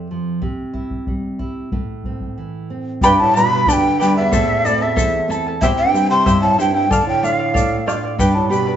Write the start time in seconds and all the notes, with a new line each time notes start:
Already playing: F2
0.11 F3
0.42 C3, bombo low
0.73 E4, bombo low
0.90 bombo low
1.07 G3, bombo low
1.39 E4, bombo low
1.72 A2, bombo low
2.04 C4, bombo low
2.20 bombo low
2.38 E3
2.70 C4
3.01 G2 G4 B4 D5 G5 B5, bombo low, shaker
3.18 A2 A5
3.35 B2 G3 B3 D4 B4 D5 G5 B5, shaker
3.52 B4 D5 B5
3.66 G2 D3 G4 B4 D5 G5 A5 B5, bombo low, shaker
3.73 G5
3.98 G2 G3 B3 D4 B4 D5 G5 B5, shaker
4.16 E2 B4 D5 E5 B5
4.32 A2 E4 A4 C5 E5 A5, bombo low, shaker
4.64 D2 A3 C4 E4 A4 D5 E5 A5, shaker
4.81 E2 E4 A4 E5 A5
4.96 E2 E4 A4 C5 E5 A5, bombo low, shaker
5.28 A3 C4 E4 A4 E5 A5, shaker
5.47 E4 A4 A5
5.61 E2 C3 E4 G4 C5 E5 G5, bombo low, shaker
5.77 G2 G5
5.92 G3 C4 E4 C5 E5 G5, shaker
6.10 C3 E4 C5 G5 C6
6.26 G2 E4 G4 C5 E5 G5, bombo low, shaker
6.42 A2 A5
6.58 G2 G3 C4 E4 C5 E5 G5, shaker
6.74 G2 E4 C5 G5
6.89 D3 A4 D5 F5 A5, bombo low, shaker
7.06 A2 G5
7.23 A2 A3 D4 F4 A4 D5 F5, shaker
7.39 D5 F5
7.54 A2 A4 D5 F5, bombo low, shaker
7.86 A3 D4 F4 A4 D5 F5, bombo rim, shaker
8.03 D5 F5
8.18 G2 G4 B4 D5 G5 B5, bombo low, shaker
8.35 A2 A5
8.49 B2 B3 D4 G4 B4 D5 G5 B5, shaker
8.67 B4 D5 B5